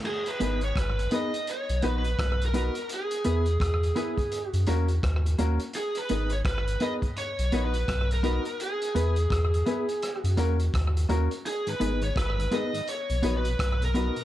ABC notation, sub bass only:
X:1
M:4/4
L:1/16
Q:"Swing 16ths" 1/4=84
K:G#m
V:1 name="Sub bass" clef=bass
z2 G,,,2 G,,,2 z3 B,,, A,,,2 B,,,3 z | z2 E,,2 E,,2 z3 F,, E,,2 D,,2 D,, z | z2 G,,,2 G,,,2 z3 B,,, A,,,2 B,,,3 z | z2 E,,2 E,,2 z3 F,, E,,2 D,,2 D,, z |
z2 G,,,2 G,,,2 z3 B,,, A,,,2 B,,,3 z |]